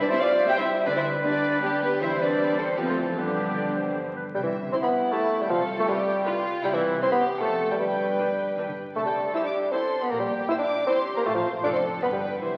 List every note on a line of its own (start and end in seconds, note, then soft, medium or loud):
0.00 0.88 C3 medium
0.00 1.97 G3 medium
0.00 2.80 G3 medium
0.00 0.28 C4 medium
0.00 0.10 D4 medium
0.00 0.04 B4 medium
0.00 0.88 C5 medium
0.00 0.05 D5 medium
0.00 0.06 D5 medium
0.09 0.38 G3 medium
0.09 0.38 C4 medium
0.09 0.13 E4 medium
0.09 0.20 E4 loud
0.09 0.19 C5 loud
0.09 0.14 E5 loud
0.09 0.19 E5 loud
0.19 0.47 F4 medium
0.19 0.28 F4 medium
0.19 0.48 D5 medium
0.19 0.28 F5 loud
0.19 0.26 F5 loud
0.29 0.66 C4 medium
0.47 0.77 G3 medium
0.47 0.77 C4 medium
0.47 0.52 G4 medium
0.47 0.51 E5 loud
0.47 0.53 G5 medium
0.47 0.58 G5 loud
0.57 0.70 E4 medium
0.57 0.66 E4 medium
0.57 0.65 C5 medium
0.57 0.86 E5 medium
0.57 0.67 E5 loud
0.67 0.88 C4 medium
0.86 1.16 D2 medium
0.86 2.02 D3 medium
0.86 0.90 D4 medium
0.86 0.90 B4 medium
0.86 2.01 B4 medium
0.86 0.96 D5 loud
0.86 0.91 D5 loud
0.95 1.09 E4 medium
0.95 1.04 E4 medium
0.95 1.03 C5 medium
0.95 1.02 E5 medium
0.95 1.05 E5 medium
1.05 2.03 D4 medium
1.23 1.53 G3 medium
1.23 1.53 B3 medium
1.23 1.62 D4 medium
1.23 1.61 G4 medium
1.23 1.62 B4 medium
1.23 1.62 D5 medium
1.23 1.62 D5 loud
1.43 1.81 F4 medium
1.62 1.82 G3 medium
1.62 1.92 G3 medium
1.62 1.92 B3 medium
1.62 1.82 D4 medium
1.62 2.38 G4 medium
1.62 1.69 G4 medium
1.62 1.82 G4 loud
1.82 1.90 B3 medium
1.82 1.91 B3 medium
1.82 2.03 F4 medium
1.82 2.01 G4 medium
1.82 1.88 B4 medium
1.82 1.90 B4 medium
2.00 2.74 E2 medium
2.00 2.80 E3 medium
2.00 2.80 G3 medium
2.00 2.75 G3 medium
2.00 2.74 C4 medium
2.00 2.10 E4 medium
2.00 2.20 E4 medium
2.00 2.20 C5 medium
2.00 2.74 C5 medium
2.00 2.09 E5 medium
2.00 2.08 E5 medium
2.19 2.58 D4 medium
2.19 2.58 B4 medium
2.19 2.58 D5 medium
2.19 2.59 D5 medium
2.39 2.80 G4 soft
2.58 2.78 C4 medium
2.58 2.67 C4 medium
2.58 2.66 A4 medium
2.58 2.78 C5 medium
2.58 2.66 C5 medium
2.77 3.17 F2 medium
2.77 3.18 F3 medium
2.77 3.19 F3 medium
2.77 2.98 F3 medium
2.77 2.88 B3 medium
2.77 3.17 C4 medium
2.77 2.81 G4 medium
2.77 2.87 B4 medium
2.77 2.83 B4 medium
2.77 3.19 C5 medium
2.88 3.17 A3 medium
2.88 2.96 A3 medium
2.88 2.96 F4 medium
2.88 3.17 A4 medium
2.88 2.95 A4 medium
2.98 3.17 E3 soft
3.17 4.15 G2 medium
3.17 4.36 G2 medium
3.17 4.15 D3 soft
3.17 4.13 D3 medium
3.17 3.94 G3 medium
3.17 3.94 G3 soft
3.17 4.15 B3 medium
3.17 3.94 D4 medium
3.17 3.95 G4 medium
3.17 3.94 G4 medium
3.17 3.53 B4 medium
3.36 4.36 D3 soft
3.56 3.94 D4 soft
3.56 3.66 D5 medium
3.75 4.13 B3 soft
3.75 4.14 C5 medium
3.95 4.36 D4 soft
4.14 4.36 B3 soft
4.14 4.24 B4 soft
4.34 4.67 C2 medium
4.34 5.48 C3 medium
4.34 4.67 C3 medium
4.34 4.39 G3 medium
4.34 4.44 G5 medium
4.44 4.57 E3 medium
4.44 4.72 E5 medium
4.53 5.51 C4 soft
4.72 4.77 C4 medium
4.72 5.46 E4 medium
4.72 4.81 E4 medium
4.72 4.81 G4 soft
4.72 5.10 G4 medium
4.72 4.76 C6 medium
4.82 5.13 B3 medium
4.82 4.90 B5 medium
5.11 5.43 A3 medium
5.11 5.20 E4 medium
5.11 5.20 G4 medium
5.11 5.40 A5 medium
5.40 5.49 G3 medium
5.40 5.49 G5 medium
5.49 5.81 C2 medium
5.49 6.63 C3 medium
5.49 5.82 C3 medium
5.49 5.63 F3 medium
5.49 5.88 A4 medium
5.49 5.78 F5 medium
5.68 6.66 B3 medium
5.78 5.84 A3 medium
5.78 5.88 A5 medium
5.88 6.44 G3 medium
5.88 5.96 F4 medium
5.88 6.26 G4 medium
5.88 5.96 B4 medium
5.88 6.44 G5 medium
6.07 6.66 B4 medium
6.25 6.63 F4 medium
6.25 6.34 F4 medium
6.25 7.01 G4 medium
6.25 6.34 B4 medium
6.63 6.96 C2 medium
6.63 6.96 C3 medium
6.63 7.43 C3 medium
6.63 6.75 G3 loud
6.63 7.02 E4 medium
6.63 6.68 G5 medium
6.74 7.02 E3 medium
6.74 6.82 E5 medium
6.83 7.81 C4 medium
7.02 7.11 C4 loud
7.02 7.11 E4 medium
7.02 7.40 G4 medium
7.02 7.11 C5 medium
7.02 7.12 C6 medium
7.11 7.25 B3 medium
7.11 7.19 B5 medium
7.40 7.73 F1 medium
7.40 7.81 F2 medium
7.40 7.73 F2 medium
7.40 7.69 A3 medium
7.40 7.50 F4 medium
7.40 7.79 A4 medium
7.40 7.50 C5 medium
7.40 7.69 A5 medium
7.60 7.81 F4 soft
7.70 7.75 G3 medium
7.70 7.74 G5 medium
7.78 8.12 G1 medium
7.78 8.12 G2 medium
7.78 8.97 G2 medium
7.78 8.75 G3 medium
7.78 8.74 B4 medium
7.78 8.74 G5 medium
7.98 8.97 B3 soft
8.18 8.27 B2 medium
8.18 8.27 D4 soft
8.18 8.27 B4 soft
8.28 8.57 G2 soft
8.57 8.61 E3 medium
8.57 8.65 D4 soft
8.57 8.65 B4 soft
8.57 8.98 D5 soft
8.67 8.75 D3 soft
8.77 8.97 D4 soft
8.95 9.28 C2 medium
8.95 9.28 C3 medium
8.95 10.12 C3 medium
8.95 9.00 A3 medium
8.95 9.31 A4 medium
8.95 9.00 A5 medium
9.05 9.34 G3 medium
9.05 9.14 G5 soft
9.15 10.29 C4 soft
9.34 9.46 E4 medium
9.34 9.43 E4 soft
9.34 9.73 G4 soft
9.34 9.43 C5 soft
9.34 9.39 E6 medium
9.44 9.73 D4 medium
9.44 9.53 D6 medium
9.53 9.90 E4 soft
9.72 10.04 C4 medium
9.72 9.81 E4 medium
9.72 10.10 A4 medium
9.72 9.81 C5 medium
9.72 10.01 C6 medium
10.02 10.12 B3 medium
10.02 10.11 B5 medium
10.10 10.43 A#1 medium
10.10 11.27 A#2 medium
10.10 10.43 A#2 medium
10.10 10.19 A#3 medium
10.10 10.86 G4 medium
10.10 10.15 A#5 medium
10.20 10.33 G3 medium
10.20 10.49 G5 medium
10.30 12.04 C4 soft
10.49 10.53 E4 medium
10.49 10.57 E4 medium
10.49 10.86 C5 medium
10.49 10.57 C5 medium
10.49 10.53 E6 medium
10.58 10.86 D4 medium
10.58 10.87 D6 medium
10.68 11.05 E4 medium
10.87 11.00 C4 medium
10.87 10.96 E4 medium
10.87 11.25 G4 medium
10.87 10.96 C5 medium
10.87 11.16 C6 medium
11.06 11.27 E4 medium
11.16 11.21 A#3 medium
11.16 11.20 A#5 medium
11.25 11.58 A1 medium
11.25 11.65 A2 medium
11.25 11.58 A2 medium
11.25 11.34 A3 medium
11.25 11.34 F4 medium
11.25 11.64 C5 medium
11.25 11.34 C5 medium
11.25 11.35 A5 medium
11.34 11.47 F3 medium
11.34 11.43 F5 medium
11.46 12.05 C5 medium
11.64 11.96 F1 medium
11.64 12.04 F2 medium
11.64 11.96 F2 medium
11.64 11.68 D4 loud
11.64 11.73 F4 medium
11.64 11.72 A4 medium
11.64 12.03 A4 medium
11.64 11.68 D6 medium
11.73 11.86 C4 medium
11.73 11.83 C6 medium
11.83 12.20 F4 soft
11.83 12.04 A4 medium
12.02 12.35 G1 medium
12.02 12.43 G2 medium
12.02 12.35 G2 medium
12.02 12.07 B3 medium
12.02 12.11 F4 soft
12.02 12.41 B4 medium
12.02 12.11 B4 soft
12.02 12.07 B5 medium
12.12 12.26 G3 medium
12.12 12.41 G5 medium
12.22 12.57 G4 soft
12.41 12.57 C2 soft
12.41 12.57 C3 soft
12.41 12.57 E3 medium
12.41 12.57 C5 soft
12.41 12.57 E5 soft